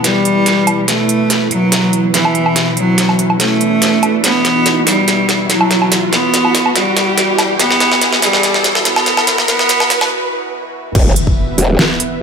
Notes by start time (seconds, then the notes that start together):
Already playing: B2 E3 E4 B4, riser
0.04 G3, snare, closed hi-hat
0.25 closed hi-hat
0.46 snare, closed hi-hat
0.67 closed hi-hat, low woodblock
0.88 A3, snare, closed hi-hat
1.09 closed hi-hat
1.30 snare, closed hi-hat
1.51 F#3, closed hi-hat
1.72 snare, closed hi-hat
1.93 closed hi-hat
2.14 E3, snare, closed hi-hat
2.25 low woodblock
2.35 closed hi-hat
2.46 low woodblock
2.56 snare, closed hi-hat
2.77 F#3, closed hi-hat
2.98 snare, closed hi-hat
3.09 low woodblock
3.19 closed hi-hat
3.30 low woodblock
3.40 A3, snare, closed hi-hat
3.61 closed hi-hat
3.82 snare, closed hi-hat
4.03 closed hi-hat, low woodblock
4.24 B3 F#4, snare, closed hi-hat
4.45 snare, closed hi-hat
4.66 snare, closed hi-hat
4.87 G3, snare, open hi-hat
5.08 snare, closed hi-hat
5.29 snare, closed hi-hat
5.50 F#3, snare, closed hi-hat
5.61 low woodblock
5.71 snare, closed hi-hat
5.82 low woodblock
5.92 snare, closed hi-hat
6.13 B3, snare, closed hi-hat
6.34 snare, closed hi-hat
6.45 low woodblock
6.55 snare, open hi-hat
6.66 low woodblock
6.76 G3, snare, closed hi-hat
6.97 snare, closed hi-hat
7.18 snare, closed hi-hat
7.39 snare, closed hi-hat, low woodblock
7.59 B3, snare, closed hi-hat
7.71 snare
7.80 snare, closed hi-hat
7.92 snare
8.01 snare, closed hi-hat
8.13 snare
8.22 G3, snare, open hi-hat
8.33 snare
8.43 snare, closed hi-hat
8.54 snare
8.64 snare, closed hi-hat
8.75 snare
8.85 B3, snare, closed hi-hat
8.96 snare, low woodblock
9.06 snare, closed hi-hat
9.17 snare, low woodblock
9.27 snare, closed hi-hat
9.38 snare
9.48 B3, snare, closed hi-hat
9.59 snare
9.69 snare, closed hi-hat
9.80 snare, low woodblock
9.90 snare, open hi-hat
10.01 snare, low woodblock
10.95 E1 E3 B3 B4 E5, kick, crash, impact
11.16 closed hi-hat
11.27 kick
11.58 E1, open hi-hat
11.79 snare
12.00 closed hi-hat